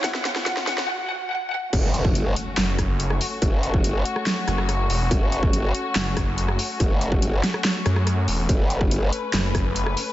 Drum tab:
CC |----------------|x---------------|----------------|----------------|
HH |x-x-x-x---------|x-x-x-x-x-x-x-o-|x-x-x-x-x-x-x-o-|x-x-x-x-x-x-x-o-|
CP |----------------|--------x-------|--------x-------|--------x-------|
SD |oooooooo--------|--------o-r--r--|-------ro-rrr---|--------o-r--r--|
BD |o---o-----------|o--o------o-----|o--o------------|o--o------o-----|

CC |----------------|----------------|
HH |x-x-x-x-x-x-x-o-|x-x-x-x-x-x-x-o-|
CP |--------x-------|--------x-------|
SD |------oro-rrr---|--------o-r--r--|
BD |o--o------------|o--o------o-----|